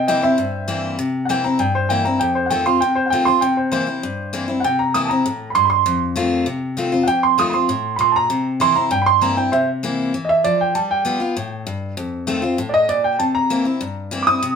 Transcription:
Already playing: C3
0.08 E3 A#3 C4 E4 D#5 G5
0.22 C4 E4 C5 E5
0.38 G2
0.68 E3 A#3 C4 E4
0.99 C3
1.25 E3 F#5
1.30 A#3 C4 E4 G5
1.44 C4 E4 A#5
1.59 G2 G5
1.75 C5
1.89 E3 A#3 C4 E4 G5
2.05 C4 E4 A#5
2.19 F2 G5
2.35 C5
2.46 F#5
2.50 D#3 A3 C4 F4 G5
2.66 C4 F4 C6
2.81 C3 G5
2.95 C5
3.06 F#5
3.10 D#3 A3 C4 F4 G5
3.25 C4 F4 C6
3.41 C3 G5
3.57 C5
3.72 E3 A#3 C4 E4 C5
3.87 C4 E4
4.03 G2
4.33 E3 A#3 C4 E4
4.48 C4 E4
4.60 F#5
4.64 C3 G5
4.79 A#5
4.94 E3 A#3 C4 E4 D#6
5.05 A5
5.09 C4 E4 A#5
5.26 A2
5.50 B5
5.55 G2 C6
5.65 B5
5.70 C6
5.86 F2
6.16 D#3 A3 C4 F4
6.46 C3
6.77 D#3 A3 C4 F4
6.92 C4 F4
7.03 F#5
7.07 F2 G5
7.23 C6
7.38 D#3 A3 C4 F4 D#6
7.50 F4 B5
7.54 C4 C6
7.69 A2
7.96 A#2 B5
8.01 C6
8.12 A5
8.16 A#5
8.30 C3
8.60 E3 A#3 C4 E4 C6
8.75 C4 E4 A#5
8.91 G2 G5
9.02 B5
9.06 C6
9.21 E3 A#3 C4 E4 A#5
9.37 C4 E4 G5
9.52 C3 C5 E5
9.83 E3 A#3 C4 E4
10.14 E3
10.25 D#5
10.29 E5
10.44 F3 D5
10.61 G5
10.75 G3 A5
10.91 G5
11.05 G3 B3 F4
11.20 B3 F4
11.37 A2
11.67 G2
11.97 F2
12.27 D#3 A3 C4 F4
12.42 C4 F4
12.58 A2
12.69 D5
12.74 D#5
12.89 A#2 D5
13.04 G5
13.19 C3 A5
13.35 A#5
13.50 E3 A#3 C4 E4
13.65 C4 E4
13.81 G2
14.11 E3 A#3 C4 E4
14.23 D6
14.27 C4 E4 D#6
14.43 C3

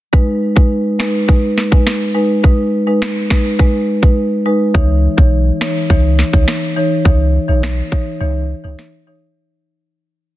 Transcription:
0.13 G#3 D#4 B4, kick
0.56 G#3 D#4 B4, kick
0.99 G#3 D#4 B4, finger snap, snare
1.28 G#3 D#4 B4, kick
1.58 snare
1.71 G#3 D#4 B4, kick
1.87 finger snap, snare
2.15 G#3 D#4 B4
2.43 G#3 D#4 B4, kick
2.87 G#3 D#4 B4
3.02 finger snap, snare
3.30 G#3 D#4 B4, finger snap, kick, snare
3.59 G#3 D#4 B4, kick
4.02 G#3 D#4 B4, kick
4.46 G#3 D#4 B4
4.74 C#2 E3 D#4 C#5, kick
5.18 B1 E3 D#4 C#5, kick
5.61 E3 D#4 C#5, finger snap, snare
5.90 C#2 E3 D#4 C#5, kick
6.19 snare
6.33 C#2 E3 D#4 C#5, kick
6.48 finger snap, snare
6.76 E3 D#4 C#5
7.05 C#2 E3 D#4 C#5, kick
7.48 B1 E3 D#4 C#5
7.63 finger snap, snare
7.92 E3 D#4 C#5, kick
8.21 C#2 E3 D#4 C#5
8.64 C#2 E3 D#4 C#5
8.79 snare
9.07 E3 D#4 C#5

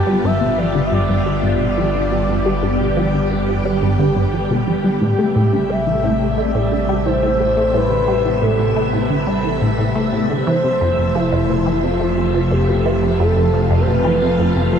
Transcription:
Already playing: G1 D3 G3 B3 F4 G4
0.07 G3
0.24 G2 E5
0.41 B2
0.58 F3 D5
0.75 D3
0.85 E5
0.92 G2 D5
1.09 G2
1.26 G3
1.43 G2
1.61 B2
1.78 F3
1.95 D3
2.12 G2
2.29 G2 G4
2.46 G3
2.63 G2
2.80 B2
2.97 F3
3.14 D3
3.31 G2
3.48 G2
3.65 G3
3.82 G2
3.99 D3
4.16 G2
4.33 F3
4.50 B2
4.67 F3
4.84 G3
5.01 A1 A2 C3 A3 G4 E5
5.19 A3
5.36 A2
5.53 D3
5.70 G3 E5
5.87 E3
6.04 A2
6.21 A2
6.31 E5
6.38 A3 D5
6.55 A2
6.72 D3
6.89 G3
7.06 E3 C5
7.23 A2
7.40 A2
7.57 A3
7.74 A2 B3 B4
7.91 D3
8.08 G3
8.25 E3
8.42 A2 A4
8.59 A2
8.76 A3
8.93 A2
9.10 D3
9.27 G3
9.44 E3
9.61 A2
9.79 A2
9.96 A3
10.13 A2
10.30 D3
10.47 F1 E3 F3 A3 C5
10.64 C3
10.81 F2
10.98 F2
11.15 F3 E4
11.32 F2
11.49 B2
11.66 E3
11.83 C3 F4
12.00 F2
12.17 F2
12.34 F3
12.51 F2 G4
12.68 B2
12.85 E3
13.03 C3
13.19 F2 F4 A4
13.37 F2
13.54 F3
13.70 F2
13.81 C5
13.88 B2 B4
14.05 E3
14.22 C3
14.39 F2
14.56 F2
14.73 F3

